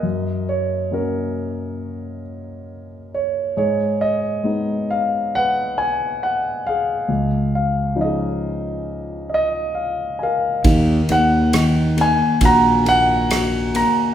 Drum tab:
RD |--------|--------|--------|xxxxxxxx|
SD |--------|--------|--------|--r---r-|
BD |--------|--------|--------|o---o---|